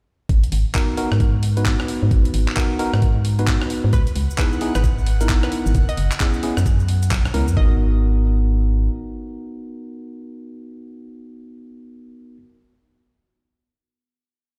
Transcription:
0.29 G#1, kick, closed hi-hat
0.44 closed hi-hat
0.52 G#1, open hi-hat
0.75 B3 D#4 F#4 A#4, kick, clap, closed hi-hat
0.97 B3 D#4 F#4 A#4, open hi-hat
1.12 G#2, cross-stick, closed hi-hat
1.20 kick, closed hi-hat
1.43 open hi-hat
1.57 B3 D#4 F#4 B4, closed hi-hat
1.66 kick, clap, closed hi-hat
1.80 cross-stick
1.88 open hi-hat
2.03 G#2
2.11 G#1, kick, closed hi-hat
2.25 closed hi-hat
2.34 G#1, open hi-hat
2.48 clap
2.57 B3 D#4 F#4 A#4, kick, clap, closed hi-hat
2.79 B3 D#4 F#4 A#4, open hi-hat
2.93 G#2, cross-stick, closed hi-hat
3.02 kick, closed hi-hat
3.25 open hi-hat
3.39 B3 D#4 F#4 B4, closed hi-hat
3.47 kick, clap, closed hi-hat
3.62 cross-stick
3.70 open hi-hat
3.84 G#2
3.93 C#2 B4 F#5, kick, closed hi-hat, cabasa
4.07 closed hi-hat, cabasa
4.16 C#2, open hi-hat
4.30 cabasa
4.38 B3 D#4 E4 G#4 B4, kick, clap, closed hi-hat, cabasa
4.53 cabasa
4.61 B3 D#4 E4 G#4, open hi-hat
4.75 G#1 B4, cross-stick, closed hi-hat, cabasa
4.84 kick, closed hi-hat, cabasa
4.98 cabasa
5.06 open hi-hat
5.21 B3 D#4 E4 A#4, closed hi-hat, cabasa
5.29 kick, clap, closed hi-hat, cabasa
5.43 B4, cross-stick, cabasa
5.52 open hi-hat
5.66 G#1, cabasa
5.75 F#1, kick, closed hi-hat, cabasa
5.89 D#5, closed hi-hat, cabasa
5.97 F#1, open hi-hat
6.11 clap, cabasa
6.20 B3 C#4 E4 G#4, kick, clap, closed hi-hat, cabasa
6.34 cabasa
6.43 B3 C#4 E4 G#4, open hi-hat
6.57 F#2, cross-stick, closed hi-hat, cabasa
6.66 kick, closed hi-hat, cabasa
6.80 cabasa
6.88 open hi-hat
7.02 closed hi-hat, cabasa
7.11 B1, kick, clap, closed hi-hat, cabasa
7.25 cross-stick, cabasa
7.34 C#2 B3 C#4 E4 A#4, open hi-hat
7.48 F#2, cabasa
7.57 G#1 B3 D#4 F#4 A#4 D#5, kick

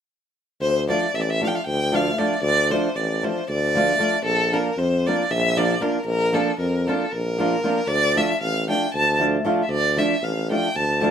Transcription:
0.60 D2 C5
0.88 F3 A3 D4 F4 D5
1.13 A1 E5
1.21 D5
1.30 E5
1.41 F3 A3 D4 F4 F5
1.48 G5
1.55 F5
1.67 D2 G5
1.92 F3 A3 D4 F4 F5
2.18 F3 A3 D4 F4 D5
2.42 D2 D5
2.70 F3 A3 D4 F4 C5
2.95 A1 D5
3.23 F3 A3 D4 F4 C5
3.48 D2 D5
3.75 F3 A3 D4 F4
3.99 F3 A3 D4 F4
4.23 A#1 A4
4.52 F3 A#3 D4 F4 A#4
4.77 F2 C5
5.06 F3 A#3 D4 F4 D5
5.30 A#1 E5
5.57 F3 A#3 D4 F4 D5
5.80 F3 A#3 D4 F4 A#4
6.05 A#1 A#4
6.33 F3 A#3 D4 F4 A4
6.58 F2 A#4
6.87 F3 A#3 D4 F4 A4
7.12 A#1 A#4
7.38 F3 A#3 D4 F4
7.63 F3 A#3 D4 F4
7.87 D2 D5
8.16 F3 A3 D4 F4 E5
8.41 A1 F5
8.68 F3 A3 D4 F4 G5
8.94 D2 A5
9.19 F3 A3 D4 F4
9.45 F3 A3 D4 F4
9.63 E5
9.68 D2 D5
9.97 F3 A3 D4 F4 E5
10.21 A1 F5
10.50 F3 A3 D4 F4 G5
10.75 D2 A5
11.01 F3 A3 D4 F4

